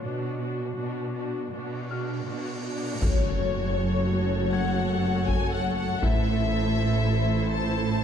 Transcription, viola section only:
0.03 0.39 D4 soft
0.03 0.39 F#4 soft
0.40 0.76 D4 soft
0.40 0.76 F#4 soft
0.77 1.14 D4 soft
0.77 1.14 F#4 soft
1.15 1.52 D4 soft
1.15 1.52 F#4 soft
1.53 1.89 D4 soft
1.53 1.89 F#4 soft
1.90 2.26 D4 soft
1.90 2.26 F#4 soft
2.27 2.64 D4 soft
2.27 2.64 F#4 soft
2.65 3.02 D4 soft
2.65 3.02 F#4 soft
3.03 8.04 A3 soft
3.03 5.99 F#4 soft
6.03 8.04 E4 soft

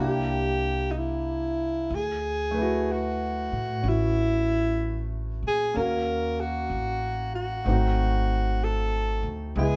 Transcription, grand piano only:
0.00 1.90 A#3 soft
0.00 1.91 D4 soft
0.00 1.92 E4 soft
0.00 1.93 G4 soft
2.51 5.73 A3 medium
2.51 5.75 B4 soft
2.58 5.76 E4 soft
2.58 3.85 F#4 medium
3.82 5.74 C#4 soft
3.82 5.76 F#4 soft
5.74 7.65 A#3 soft
5.74 7.65 C#4 soft
5.74 7.66 F5 soft
5.79 7.67 F#4 soft
7.64 9.55 A3 soft
7.64 9.56 C4 soft
7.64 9.56 D#4 soft
7.70 9.57 F#4 medium
9.57 9.76 G#3 medium
9.57 9.76 B3 soft
9.57 9.76 E4 medium
9.57 9.76 D#5 soft

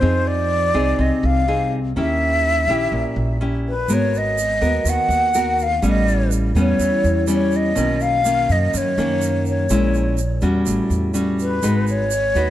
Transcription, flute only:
0.00 0.29 C5 medium
0.27 1.02 D5 medium
1.01 1.27 D#5 medium
1.25 1.73 F5 medium
1.99 3.38 E5 loud
3.68 3.95 B4 medium
3.93 4.19 C#5 medium
4.18 4.91 D#5 medium
4.89 5.64 F#5 medium
5.62 5.85 F5 medium
5.89 6.31 D#5 medium
6.61 7.27 C#5 medium
7.33 7.58 C#5 medium
7.56 8.03 D#5 medium
8.02 8.53 F5 loud
8.52 8.79 D#5 medium
8.77 9.48 C#5 medium
9.49 10.40 C#5 medium
11.42 11.85 B4 medium
11.90 12.50 C#5 medium

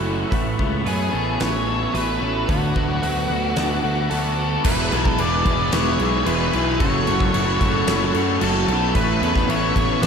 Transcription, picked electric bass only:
0.00 0.23 F#1 medium
0.32 0.54 A1 medium
0.59 0.82 C#2 medium
0.86 1.09 F#2 medium
1.13 1.36 A1 medium
1.40 1.86 A1 medium
1.94 2.17 A1 medium
2.21 2.44 A1 medium
2.49 2.71 D2 medium
2.76 2.98 D2 medium
3.03 3.25 D2 medium
3.30 3.52 D2 medium
3.57 3.79 D2 medium
3.84 4.06 D2 medium
4.11 4.56 D2 medium
4.65 4.88 E1 loud
4.92 5.15 B1 medium
5.19 5.42 E1 medium
5.45 5.68 E1 medium
5.73 5.96 E1 loud
6.00 6.22 B1 medium
6.26 6.49 E1 loud
6.54 6.77 B1 medium
6.80 7.03 F#1 loud
7.08 7.30 F#1 medium
7.34 7.57 F#1 medium
7.61 7.84 F#1 medium
7.87 8.10 F#1 loud
8.14 8.37 F#2 medium
8.41 8.64 F#1 medium
8.68 8.91 B1 loud
8.95 9.18 A1 loud
9.21 9.44 E2 medium
9.47 9.71 A1 loud
9.76 9.99 A1 medium
10.02 10.07 A1 medium

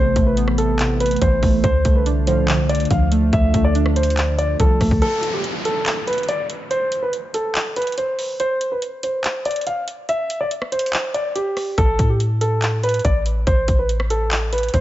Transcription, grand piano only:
0.00 0.25 C5 loud
0.26 0.35 B4 medium
0.58 0.98 A4 medium
1.00 1.17 B4 medium
1.22 1.61 C5 medium
1.64 1.94 C5 loud
1.96 2.04 B4 medium
2.27 2.67 C5 medium
2.69 2.86 D5 medium
2.91 3.07 F5 medium
3.33 3.63 E5 loud
3.64 3.73 D5 medium
3.96 4.36 C5 medium
4.38 4.55 D5 medium
4.60 4.99 A4 medium
5.02 5.32 A4 loud
5.33 5.42 G4 medium
5.65 6.05 A4 medium
6.07 6.24 B4 medium
6.29 6.45 D5 medium
6.71 7.00 C5 loud
7.02 7.11 B4 medium
7.34 7.74 A4 medium
7.76 7.93 B4 medium
7.98 8.37 C5 medium
8.40 8.70 C5 loud
8.72 8.80 B4 medium
9.03 9.43 C5 medium
9.46 9.62 D5 medium
9.67 9.83 F5 medium
10.09 10.39 E5 loud
10.41 10.49 D5 medium
10.72 11.12 C5 medium
11.14 11.31 D5 medium
11.35 11.75 G4 medium
11.78 12.08 A4 loud
12.10 12.18 G4 medium
12.41 12.81 A4 medium
12.83 13.00 B4 loud
13.05 13.21 D5 medium
13.47 13.77 C5 loud
13.79 13.87 B4 medium
14.10 14.50 A4 medium
14.53 14.69 B4 medium
14.74 14.81 C5 medium

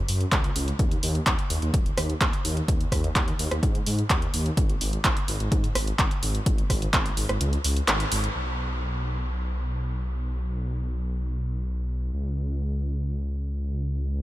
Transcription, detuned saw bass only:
0.09 0.25 F#2 medium
0.32 0.49 C#2 medium
0.56 0.72 C#2 medium
0.79 0.96 D#2 medium
1.03 1.20 D#2 loud
1.27 1.35 D#2 loud
1.50 1.59 D#2 medium
1.62 1.70 D#2 medium
1.74 1.90 D#1 medium
1.97 2.14 D#2 medium
2.21 2.29 D#2 medium
2.45 2.61 D#2 medium
2.68 2.85 D#2 medium
2.92 3.08 D#2 loud
3.16 3.32 D#2 loud
3.39 3.48 D#2 loud
3.51 3.59 D#2 medium
3.63 3.79 G#2 loud
3.87 4.03 G#2 medium
4.10 4.27 D#2 medium
4.34 4.50 D#2 medium
4.57 4.74 G#1 loud
4.81 4.97 G#1 medium
5.05 5.13 G#1 loud
5.28 5.36 G#1 medium
5.40 5.48 G#1 medium
5.52 5.68 G#2 medium
5.75 5.92 G#1 medium
5.99 6.07 G#1 medium
6.23 6.39 G#1 medium
6.46 6.63 G#1 medium
6.70 6.86 G#1 medium
6.93 7.10 G#1 loud
7.17 7.25 G#1 loud
7.29 7.37 G#1 medium
7.41 7.57 C#2 loud
7.64 7.81 C#2 medium
7.88 8.05 G#1 medium
8.12 8.28 G#1 medium
8.35 12.11 B1 medium
12.13 14.22 C#2 medium

